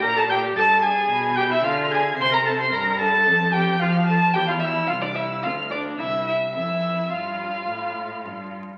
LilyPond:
<<
  \new Staff \with { instrumentName = "Violin" } { \time 4/4 \key f \major \tempo 4 = 110 bes'''16 a'''16 g'''8 a'''8 aes'''4 g'''16 e'''16 f'''8 aes'''8 | c''''16 bes'''16 a'''16 c''''16 bes'''8 a'''4 g'''8 f'''8 a'''8 | g'''16 f'''16 e'''8 f'''16 d'''16 e'''8 f'''8 d'''8 e'''8 e'''8 | e'''4 f'''2~ f'''8 r8 | }
  \new Staff \with { instrumentName = "Violin" } { \time 4/4 \key f \major bes''16 a''16 g''8 a''8 aes''4 g''16 e''16 f''8 aes''8 | c'''16 bes''16 a''16 c'''16 bes''8 a''4 g''8 f''8 a''8 | g''16 f''16 e''8 f''16 d''16 e''8 f''8 d''8 e''8 e''8 | e''4 f''2~ f''8 r8 | }
  \new Staff \with { instrumentName = "Viola" } { \time 4/4 \key f \major bes'16 a'16 g'8 a'8 aes'4 g'16 e'16 f'8 aes'8 | c''16 bes'16 a'16 c''16 bes'8 a'4 g'8 f'8 a'8 | g'16 f'16 e'8 f'16 d'16 e'8 f'8 d'8 e'8 e'8 | e'4 f'2~ f'8 r8 | }
  \new Staff \with { instrumentName = "Cello" } { \clef bass \time 4/4 \key f \major bes,4 g,4 b,4 d4 | c4 g,4 f,4 f4 | e,4 c,4 d,4 c,4 | f,4 g,4 a,4 g,4 | }
>>